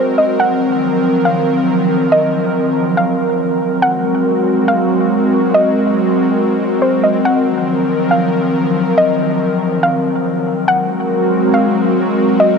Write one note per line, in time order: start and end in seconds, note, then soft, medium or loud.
0.00 0.36 F#3 medium
0.00 0.36 G#3 medium
0.00 3.78 C4 medium
0.00 0.36 F#4 medium
0.00 7.21 A#4 medium
0.00 0.17 C5 medium
0.18 0.38 D#5 medium
0.39 3.79 D#3 medium
0.39 3.79 F3 medium
0.39 3.79 F#3 medium
0.39 0.80 F#5 loud
1.25 2.07 F5 medium
2.12 2.52 D#5 loud
2.97 3.79 F5 medium
3.82 7.22 F#3 medium
3.82 7.22 G#3 medium
3.82 10.64 C4 medium
3.82 7.22 F#4 medium
3.82 4.23 F#5 loud
4.68 5.50 F5 loud
5.54 5.94 D#5 loud
6.82 7.02 C5 medium
7.04 7.24 D#5 medium
7.25 10.65 D#3 medium
7.25 10.65 F3 medium
7.25 10.65 F#3 medium
7.25 10.65 A#4 medium
7.25 7.66 F#5 loud
8.11 8.93 F5 medium
8.98 9.37 D#5 loud
9.83 10.64 F5 medium
10.68 12.58 F#3 medium
10.68 12.58 G#3 medium
10.68 12.58 C4 medium
10.68 12.58 F#4 medium
10.68 12.58 A#4 medium
10.68 11.08 F#5 loud
11.54 12.36 F5 loud
12.40 12.58 D#5 loud